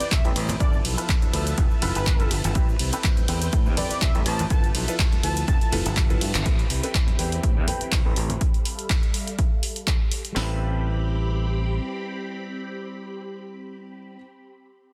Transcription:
Already playing: C4 B4 G5
0.00 C4 E4 B4 D5, muted fingered electric bass stroke, closed hi-hat, shaker
0.11 C2 G3 C4 E5, kick, clap, closed hi-hat, shaker
0.24 A1 C4 G4 A4 B4, closed hi-hat, low conga, shaker
0.35 A1 G3 C4 E4 B4, open hi-hat, ride
0.48 C4 E4 B4, closed hi-hat, high conga, shaker
0.60 G1 F3 B3 E4 F4 A4 B4 D5 E5 A5, kick, closed hi-hat, shaker
0.73 shaker
0.84 B1 F3 B3 E4 A4, open hi-hat, ride
0.97 B3 E4 F4 A4 B4, closed hi-hat, shaker
1.08 F3 B3 E4 A4, kick, clap, closed hi-hat, high conga, shaker
1.22 closed hi-hat, low conga, shaker
1.33 D2 F3 B3 E4 A4 B4, open hi-hat, ride
1.46 B3 E4 A4, closed hi-hat, shaker
1.58 F1, kick, closed hi-hat, shaker
1.70 B3 E4 A4, shaker
1.82 F1 E4 F4 A4 B4, open hi-hat, ride, high conga, low conga
1.95 G1 B3 E4 A4 B4, closed hi-hat, shaker
2.06 F3 E4 A4, kick, clap, closed hi-hat, shaker
2.19 E4 F4 A4 B4, closed hi-hat, low conga, shaker
2.30 G1 F3 B3 E4 A4, open hi-hat, ride
2.44 G1 B3 E4 A4, closed hi-hat, high conga, shaker
2.55 A1 G3 C4 E4 G4 A4 B4 G5, kick, closed hi-hat, shaker
2.69 shaker
2.79 C2 G3 C4 E4 B4, open hi-hat, ride
2.92 C4 E4 G4 A4 B4, closed hi-hat, shaker
3.03 G3 C4 B4, kick, clap, closed hi-hat, high conga, shaker
3.17 closed hi-hat, low conga, shaker
3.28 E2 G3 C4 E4 G4 A4 B4, open hi-hat, ride
3.41 C4 E4 B4, closed hi-hat, shaker
3.52 A2, kick, closed hi-hat, shaker
3.66 E2 C4 E4 B4, shaker
3.77 C4 G4 A4 B4 D5, open hi-hat, ride, high conga, low conga
3.90 C4 E4 B4 D5, muted fingered electric bass stroke, closed hi-hat, shaker
4.01 C2 G3 C4 E5, kick, clap, closed hi-hat, shaker
4.15 A1 C4 G4 A4 B4, closed hi-hat, low conga, shaker
4.26 A1 G3 C4 E4 B4 A5, open hi-hat, ride
4.39 C4 E4 B4, closed hi-hat, high conga, shaker
4.50 G1 F3 B3 E4 F4 A4 B4 E5 A5, kick, closed hi-hat, shaker
4.64 closed hi-hat, shaker
4.74 B1 F3 B3 E4 A4, open hi-hat, ride
4.88 B3 E4 F4 A4 B4, closed hi-hat, shaker
4.99 F3 B3, kick, clap, closed hi-hat, high conga, shaker
5.12 closed hi-hat, low conga, shaker
5.23 D2 F3 B3 E4 A4 B4 A5, open hi-hat, ride
5.36 B3 E4 A4, closed hi-hat, shaker
5.48 F1 A5, kick, closed hi-hat, shaker
5.61 B3 E4 A4 A5, closed hi-hat, shaker
5.72 F1 E4 F4 A4 B4, open hi-hat, ride, high conga, low conga
5.85 G1 B3 E4 A4, closed hi-hat, shaker
5.96 F3 E4, kick, clap, closed hi-hat, shaker
6.09 E4 F4 A4 B4, closed hi-hat, low conga, shaker
6.20 G2 F3 B3 E4 A4, open hi-hat, ride
6.34 G1 B3 E4 A4, clap, closed hi-hat, high conga, shaker
6.45 A1 G3 C4 E4 G4 A4 B4 B5, kick, closed hi-hat, shaker
6.59 closed hi-hat, shaker
6.69 C2 G3 C4 E4 B4, open hi-hat
6.83 C4 E4 G4 A4 B4, closed hi-hat, shaker
6.94 G3, kick, clap, closed hi-hat, high conga, shaker
7.07 closed hi-hat, low conga, shaker
7.18 E2 G3 C4 E4 G4 A4 B4, open hi-hat
7.32 C4 E4 B4, closed hi-hat, shaker
7.43 A2 G3 C4 B4, kick, closed hi-hat
7.56 E2 C4 E4 B4, shaker
7.67 C4 G4 A4 B4, open hi-hat, high conga, low conga
7.80 C4 E4 B4, muted fingered electric bass stroke, closed hi-hat, shaker
7.92 C2, kick, clap, closed hi-hat
8.05 A1 C4 G4 A4 B4, low conga, shaker
8.16 A1 G3 C4 E4 B4, open hi-hat
8.29 C4 E4 B4, closed hi-hat, high conga, shaker
8.41 G3 A4 E5 F5, kick, closed hi-hat
8.54 closed hi-hat
8.65 open hi-hat
8.79 closed hi-hat
8.90 kick, clap, closed hi-hat
9.03 closed hi-hat
9.14 open hi-hat
9.27 closed hi-hat
9.39 kick, closed hi-hat
9.63 open hi-hat
9.76 closed hi-hat
9.87 kick, clap, closed hi-hat
10.12 open hi-hat
10.25 closed hi-hat
10.32 A1 G3 C4 G4 A4 B5, snare, open hi-hat
10.37 C4 E4 B4
10.44 B4

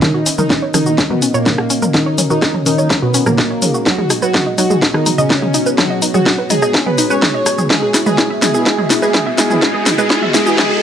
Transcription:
0.02 D#3 C#4 D#4 F#4 A#4 D#5, kick, snare, mid tom, shaker
0.14 F#4
0.26 C#4, open hi-hat, shaker
0.38 D#3 D#4 A#4, mid tom, shaker
0.50 C#4, kick, snare, shaker
0.62 C#5
0.74 D#3 C#4 D#4, cross-stick, mid tom, open hi-hat, shaker
0.86 D#3 A#3 D#4 F#4, shaker
0.98 C#4, kick, snare, shaker
1.10 B2 B3 A#4, mid tom
1.22 C#4, open hi-hat, shaker
1.34 A#2 A#3 C#5, shaker
1.46 C#4, kick, snare, mid tom, shaker
1.58 F#4, cross-stick
1.70 C#4, open hi-hat, shaker
1.82 A#4, mid tom, shaker
1.94 D#3 C#4 D#4 C#5, kick, snare, shaker
2.06 C#5
2.18 C#4, mid tom, open hi-hat, shaker
2.30 D#3 D#4 F#4, shaker
2.42 C#4, kick, cross-stick, snare, shaker
2.54 A#4, mid tom
2.66 D#3 C#4 D#4, open hi-hat, shaker
2.78 D#3 A#3 D#4 C#5, shaker
2.90 C#4, kick, snare, mid tom, shaker
3.02 B2 B3 F#4
3.14 C#4, open hi-hat, shaker
3.26 A#2 A#3 A#4, cross-stick, mid tom, shaker
3.38 C#4, kick, snare, shaker
3.50 C#5
3.62 G#3 C#4 D#4 G#4, mid tom, open hi-hat, shaker
3.74 F#4, shaker
3.86 F#3 B3 D#4 F#4 G#4 D#5, kick, snare, shaker
3.98 G#4, mid tom
4.10 D#4, cross-stick, open hi-hat, shaker
4.22 F#3 F#4 B4, shaker
4.34 D#4, kick, snare, mid tom, shaker
4.46 D#5
4.58 F#3 D#4 F#4, open hi-hat, shaker
4.70 G#3 D#4 G#4, mid tom, shaker
4.82 D#4, kick, snare, shaker
4.94 D#3 D#4 B4, cross-stick
5.06 D#4, mid tom, open hi-hat, shaker
5.18 C#3 C#4 D#5, shaker
5.30 D#4, kick, snare, shaker
5.42 G#4, mid tom
5.54 D#4, open hi-hat, shaker
5.66 B4, shaker
5.78 F#3 D#4 F#4 C#5, kick, cross-stick, snare, mid tom, shaker
5.90 D#5
6.02 D#4, open hi-hat, shaker
6.14 F#3 F#4 G#4, mid tom, shaker
6.26 D#4, kick, snare, shaker
6.38 B4
6.50 G#3 D#4 G#4, mid tom, open hi-hat, shaker
6.62 D#5, cross-stick, shaker
6.74 D#4, kick, snare, shaker
6.86 B3 G#4 B4, mid tom
6.98 D#4, open hi-hat, shaker
7.10 G#3 C#4 D#4 G#4 B4 C#5, shaker
7.22 D#4, kick, snare, mid tom, shaker
7.34 D#5
7.46 D#4, cross-stick, open hi-hat, shaker
7.58 G#4, mid tom, shaker
7.70 G#3 B3 E4 G#4 E5, kick, snare, mid tom, riser, shaker
7.82 G#4
7.94 E4, snare, open hi-hat, shaker
8.06 G#3 G#4 B4, mid tom, shaker
8.18 E4, kick, snare, shaker
8.30 E5
8.42 G#3 E4 G#4, snare, mid tom, open hi-hat, shaker
8.54 E3 B3 E4 G#4, shaker
8.66 G#3 E4 G#4, kick, snare, shaker
8.78 G#4, mid tom
8.90 E4, snare, open hi-hat, shaker
9.02 G#3 G#4 B4, shaker
9.14 E4, kick, snare, mid tom, shaker
9.26 E5
9.38 G#3 E4 G#4, snare, open hi-hat, shaker
9.50 E3 B3 E4 G#4, mid tom, shaker
9.62 G#3 E4 G#4 D#5, kick, snare, shaker
9.74 G#4
9.86 E4, snare, mid tom, open hi-hat, shaker
9.98 G#3 G#4 B4, shaker
10.10 E4, kick, snare, shaker
10.22 E5, mid tom
10.34 G#3 E4 G#4, snare, open hi-hat, shaker
10.46 E3 B3 E4 G#4, shaker
10.58 G#3 E4 G#4, kick, snare, mid tom, shaker
10.70 G#4

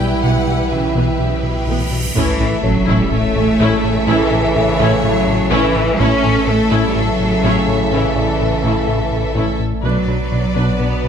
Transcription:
Already playing: B1 E3 G3 E4 G4 B4 E5 G5
0.00 B2
0.23 B1 B2 E3 G3 B3 F#5, cymbal swell
0.47 B1 B2 G3 E4
0.70 B1 B2 C#3 E3 E4 E5
0.95 B1 B2 E3 B3
1.19 B1 B2 C#3 G3 E4
1.43 B1 B2 E3 E4
1.67 B1 A2 B2 E3 B3
1.92 G2 B2
2.15 A1 A2 C#3 E3 A3 C#4 E4 A4 E5, sub drop
2.40 A1 A2 C#4 A4
2.63 A1 A2 F#3 A3 C#4 A4 C#5
2.88 A1 A2 A3 C#4 E4
3.01 G3
3.11 A1 A2 A3 C#4 A4 C#5
3.36 A1 A2 A3 C#4 A4
3.60 A1 A2 A3 C#4 E4
3.84 A2
4.07 A1 A2 E3 A3 C#4 E4 A4
4.32 A1 A2 C#4 A4
4.55 A1 A2 A3 C#4 A4 C#5 E5
4.79 A1 A2 A3 C#4 E4
5.03 A1 A2 F#3 C#4 A4
5.27 A1 A2 A3 C#4 A4
5.51 A1 A2 E3 A3 C#4 E4 B4
5.75 A2
5.99 A1 A2 C#3 E3 A3 C#4 E4 A4 C#5 E5
6.23 A1 A2 C#4 A4
6.47 A1 A2 A3 C#4 A4
6.71 A1 A2 A3 C#4 E4
6.85 G3
6.95 A1 A2 F#3 C#4 A4
7.20 A1 A2 A3 C#4 A4
7.43 A1 A2 A3 C#4 E4 C#5
7.68 A2
7.92 A1 A2 E3 A3 C#4 E4 A4
8.15 A1 A2 C#4 A4 D5
8.40 A1 A2 A3 C#4 A4
8.64 A1 A2 A3 C#4 E4
8.88 A1 A2 C#4 A4
9.11 A1 A2 A3 C#4 A4
9.35 A1 A2 A3 C#4 E4
9.59 A2
9.83 B1 B2 F#3 B3 D4 B4 D5
10.07 B1 B2 D4 F#4 B4
10.32 B1 B2 D4 B4
10.56 B1 B2 B3 D4 B4
10.79 B1 B2 B3 D4 F#4 B4
11.04 B1 B2 D4 B4

